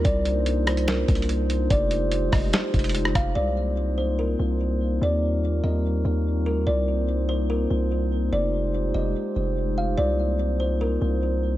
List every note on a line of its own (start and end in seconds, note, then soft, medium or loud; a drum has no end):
0.00 3.32 D#4 medium
0.00 3.32 F4 medium
0.05 1.04 C2 loud
0.05 1.69 A#3 medium
0.05 1.69 D4 medium
0.05 3.33 C5 medium
0.05 0.63 D5 loud
0.05 kick loud
0.05 closed hi-hat medium
0.25 closed hi-hat medium
0.46 closed hi-hat medium
0.67 0.87 C5 medium
0.67 cross-stick loud
0.67 closed hi-hat medium
0.77 closed hi-hat medium
0.88 1.67 A#4 medium
0.88 snare loud
0.88 closed hi-hat medium
1.08 1.68 C2 loud
1.08 kick medium
1.08 closed hi-hat medium
1.15 closed hi-hat medium
1.22 closed hi-hat medium
1.29 closed hi-hat medium
1.50 closed hi-hat medium
1.70 2.30 F1 loud
1.70 3.34 G#3 medium
1.70 3.34 G4 medium
1.70 2.29 D5 loud
1.70 kick loud
1.70 closed hi-hat medium
1.91 closed hi-hat medium
2.12 closed hi-hat medium
2.32 2.53 F1 loud
2.32 3.11 D#5 medium
2.32 kick medium
2.32 cross-stick loud
2.32 open hi-hat medium
2.53 snare loud
2.53 closed hi-hat medium
2.74 3.14 F1 loud
2.74 kick medium
2.74 closed hi-hat soft
2.79 closed hi-hat medium
2.84 closed hi-hat medium
2.89 closed hi-hat medium
2.95 closed hi-hat medium
3.05 cross-stick loud
3.15 3.35 F1 loud
3.15 3.35 F5 medium
3.15 kick loud
3.15 cross-stick loud
3.15 closed hi-hat medium
3.35 4.35 C2 loud
3.35 5.00 A#3 medium
3.35 8.29 C4 medium
3.35 11.57 D#4 medium
3.35 5.00 F4 medium
3.35 5.00 C5 medium
3.35 3.94 D5 loud
3.98 4.18 C5 medium
4.19 4.98 A#4 medium
4.39 4.99 C2 loud
5.01 5.61 D#2 loud
5.01 6.65 G3 medium
5.01 6.65 F4 medium
5.01 6.65 A#4 medium
5.01 5.61 D5 medium
5.64 6.03 D#2 loud
5.64 6.42 D#5 medium
6.05 6.48 D#2 loud
6.46 6.58 D2 loud
6.46 6.66 A#4 medium
6.57 6.67 D#2 medium
6.67 7.67 C2 loud
6.67 8.31 A#3 medium
6.67 11.57 F4 medium
6.67 8.31 C5 medium
6.67 7.25 D5 medium
7.29 7.49 C5 medium
7.50 8.29 A#4 medium
7.71 8.30 C2 loud
8.32 8.92 F1 loud
8.32 9.96 G#3 medium
8.32 9.96 G4 medium
8.32 11.57 C5 medium
8.32 8.91 D5 loud
8.94 9.15 F1 loud
8.94 9.73 D#5 medium
9.36 9.96 F1 loud
9.78 9.97 F5 medium
9.98 10.98 C2 loud
9.98 11.57 A#3 medium
9.98 11.57 C4 medium
9.98 10.56 D5 loud
10.60 10.80 C5 medium
10.81 11.57 A#4 medium
11.02 11.57 C2 loud